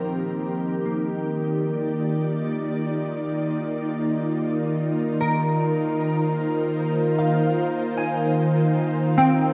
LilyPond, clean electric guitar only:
\new Staff \with { instrumentName = "Clean electric guitar" } { \time 3/4 \key ees \major \tempo 4 = 75 << { g'2~ g'8 r8 | r2. | r2. | f''4 aes''4. g''8 | } \\ { c'4 bes2~ | bes2 r4 | r8 bes'2~ bes'8~ | bes'4. r4 c'8 | } >> }